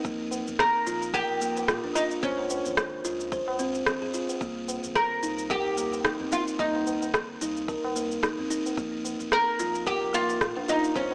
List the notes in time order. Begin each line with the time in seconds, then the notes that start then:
0.05 A#1 A#3, kick, shaker
0.31 tabla tin, shaker
0.47 F1, tabla tin, tabla ge, shaker
0.59 A#4, kick, cross-stick, shaker
0.87 A#1 F4, shaker
1.02 shaker
1.14 G4 A#4, kick, shaker
1.29 A#1
1.41 A#3, tabla tin, shaker
1.57 tabla na, shaker
1.68 A#2 F4, kick, cross-stick, shaker
1.84 D4, tabla tin, tabla ge
1.95 D#4 F4, shaker
2.11 shaker
2.23 C#2 C#4 C5, kick, shaker
2.39 tabla na
2.50 tabla tin, shaker
2.65 G#1, tabla na, tabla tin, tabla ge, shaker
2.77 kick, cross-stick, shaker
3.05 C#2 F4, shaker
3.20 shaker
3.32 C5, kick, shaker
3.48 C#2, tabla na
3.59 C4, tabla tin, shaker
3.75 shaker
3.86 G#1 C4, kick, cross-stick, shaker
4.02 G#4, tabla ge
4.14 F4, shaker
4.29 tabla tin, shaker
4.41 C2 A#3, kick, shaker
4.68 tabla tin, shaker
4.84 G1, tabla tin, tabla ge, shaker
4.95 A#4, kick, cross-stick, shaker
5.23 C2 D#4, shaker
5.39 shaker
5.50 G4 A#4, kick, shaker
5.66 C2
5.77 A#3, tabla tin, shaker
5.93 tabla na, shaker
6.05 G1 D#4, kick, cross-stick, shaker
6.20 C4, tabla tin, tabla ge
6.32 D#4 F4, shaker
6.47 shaker
6.59 C2 A#3 D#4, kick, shaker
6.75 tabla na
6.87 tabla tin, shaker
7.02 G1, tabla na, shaker
7.14 kick, cross-stick, shaker
7.41 C2 D#4, shaker
7.57 shaker
7.68 A#4, kick, shaker
7.84 C2, tabla na
7.96 A#3, tabla tin, shaker
8.11 shaker
8.23 G1 D#4, kick, cross-stick, shaker
8.38 C4, tabla ge
8.50 D#4, shaker
8.66 tabla tin, shaker
8.77 A#1 A#3, kick, shaker
9.05 tabla tin, shaker
9.20 F1, tabla tin, tabla ge, shaker
9.32 A#4, kick, cross-stick, shaker
9.59 A#1 F4, shaker
9.75 shaker
9.87 G4 A#4, kick, shaker
10.02 A#1
10.14 A#3 F4, tabla tin, shaker
10.29 tabla na, shaker
10.41 A#2 F4, kick, cross-stick, shaker
10.56 D4, tabla tin, tabla ge
10.68 D#4 F4, shaker
10.84 shaker
10.96 C#2 C#4 C5, kick, shaker
11.11 tabla na